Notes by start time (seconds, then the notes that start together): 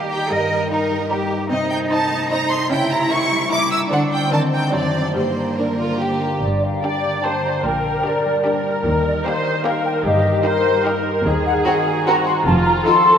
Already playing: D#3 G3 A#3 D#4 G4 A#4
0.10 A#4 G5
0.30 G2 G3 A#4 D#5
0.51 G4
0.70 D#4 A#4
0.91 G3
1.11 A#3 D#4 G4 A#4
1.31 G4
1.51 C3 C4 D#4 D#5
1.70 A4 G5
1.91 D#4 C5 A5
2.10 A3
2.30 C4 D#4 C5 A#5
2.50 A4 C6
2.71 C#3 C#4 E4 G5
2.91 G4 A#5
3.11 E4 A#4 C#6
3.32 G3
3.51 A#3 E4 A#4 D6
3.71 G4 E6
3.90 D3 D4 C5 F#5
4.11 D4 C5 G5
4.31 D#3 C4 D4 A#4 A5
4.52 D4 A#4 G5
4.71 F#2 F#3 D4 C5 D5
4.94 D4 C5
5.15 G2 G3 A#3 C5
5.37 A#4
5.58 D4 A#4
5.78 D3 F4
6.00 A#3 G4
6.22 A#4
6.41 G1 G2 D5
6.63 A#4 F5
6.82 D4 G4 A#4 D5 G5
7.04 D3
7.22 A#3 D4 G4 A#4 C5 A5
7.43 A#4 A#5
7.64 A#1 A#2 A#4 G5
7.84 A#4
8.05 D4 G4 A#4 D5
8.25 G3
8.45 A#3 D4 G4 A#4
8.65 A#4
8.85 D#2 D#3 A#4
9.05 A#4 D5
9.24 A#3 G4 A#4 C5 D#5
9.46 D#4
9.63 A#3 G4 A#4 F5
9.85 A#4 G5
10.05 G1 G2 G4 D#5
10.26 A#4
10.45 D#4 G4 A#4 C5
10.66 G3
10.86 D#4 G4 A#4
11.06 A#4
11.25 D#2 D#3 G#4 D#5
11.46 A#4 F#5
11.65 C4 F#4 A#4 G#5
11.86 A#3
12.05 C4 F#4 A#4 A#5
12.26 A#4 C6
12.45 F1 F2 F3 F4 A5
12.66 A4 A#5
12.86 D#4 F4 A4 C6
13.06 C4